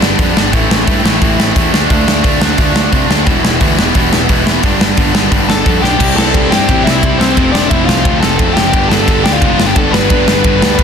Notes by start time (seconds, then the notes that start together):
Already playing: G2 D3 G3 B3 D4
0.02 G1, snare
0.19 F2 G2 D3 G3 B3 D4, kick, open hi-hat
0.36 G1 G2 D3 G3 B3 D4, snare
0.52 A1 A2 E3 A3 C4 E4, kick, open hi-hat
0.70 A1, snare
0.87 G2 A2 E3 A3 C4 E4, kick, open hi-hat
1.03 A1 A2 E3 A3 C4 E4, snare
1.20 A1 A2 E3 A3 C4 E4, kick, open hi-hat
1.39 A1, snare
1.55 E2 A2 E3 A3 C4 E4, kick, open hi-hat
1.72 D2 D3 A3 D4 F4, snare
1.88 D2 D3 A3 D4 F4, kick, open hi-hat
2.08 D2, snare
2.23 D2 D3 A3 D4 F4, kick, open hi-hat
2.40 D2 D3 A3 D4 F4, snare
2.58 D2 D3 A3 D4 F4, kick, open hi-hat
2.75 D2, snare
2.91 C3 D3 A3 D4 F4, kick, open hi-hat
3.09 D2 D3 A3 D4 F4, snare
3.26 E1 E2 B2 E3 G3 B3 E4, kick, open hi-hat
3.44 E1, snare
3.60 D2 E2 B2 E3 G3 B3 E4, kick, open hi-hat
3.77 E1 E2 B2 E3 G3 B3 E4, snare
3.95 E1 E2 B2 E3 G3 B3 E4, kick, open hi-hat
4.13 E1, snare
4.29 E1 E2 B2 E3 G3 B3 E4, kick, open hi-hat
4.46 E1 E2 B2 E3 G3 B3 E4, snare
4.63 G1 G2 D3 G3 B3 D4, kick, open hi-hat
4.81 G1, snare
4.97 G1 G2 D3 G3 B3 D4, kick, open hi-hat
5.14 G1 G2 D3 G3 B3 D4, snare
5.31 G1 G2 D3 G3 B3 D4, kick, open hi-hat
5.49 G1 A4 A5, snare
5.66 F2 G2 D3 G3 B3 D4, kick, open hi-hat
5.82 B1 G2 D3 G3 B3 D4 G4 G5, snare
6.00 C2 C3 G3 C4 E4, kick, crash
6.16 C2 C3 G3 C4 E4 A4 A5, snare
6.33 C2 C3 G3 C4 E4, kick, ride
6.50 G2 C3 G3 C4 E4 G4 G5, snare
6.67 A1 C3 G3 C4 E4, kick, ride
6.84 C2 C3 G3 C4 E4 E5, snare
7.02 C2 C3 G3 C4 E4, kick, ride
7.18 C2 C3 G3 C4 E4 C5, snare
7.36 F1 F2 C3 F3 A3 C4, kick, ride
7.52 F1 F2 C3 F3 A3 C4 D4 D5, snare
7.69 F1 F2 C3 F3 A3 C4 E4 E5, kick, ride
7.86 C2 F2 C3 F3 A3 C4 F4 F5, snare
8.04 D2 F2 C3 F3 A3 C4, kick, ride
8.20 F1 F2 C3 F3 A3 C4 A4 A5, snare
8.38 F1 F2 C3 F3 A3 C4, kick, ride
8.53 F#1 F2 C3 F3 A3 C4 G4 G5, snare
8.72 G1 G2 D3 G3 B3 D4, kick, ride
8.89 G1 G2 D3 G3 B3 D4 A4 A5, snare
9.06 G1 G2 D3 G3 B3 D4, kick, ride
9.24 D2 G2 D3 G3 B3 D4 G4 G5, snare
9.32 F4 F5
9.41 F1 G2 D3 G3 B3 D4, kick, ride
9.59 G1 G2 D3 G3 B3 D4, snare
9.66 G4 G5
9.76 G1 G2 D3 G3 B3 D4 A4 A5, kick, ride
9.91 G1 G2 D3 G3 B3 D4 B4 B5, snare
10.09 G1 G2 D3 G3 B3 D4, kick, ride
10.27 G1 G2 D3 G3 B3 D4, snare
10.44 G1 G2 D3 G3 B3 D4, kick, ride
10.61 D2 G2 D3 G3 B3 D4, snare
10.79 F1 G2 D3 G3 B3 D4, kick, ride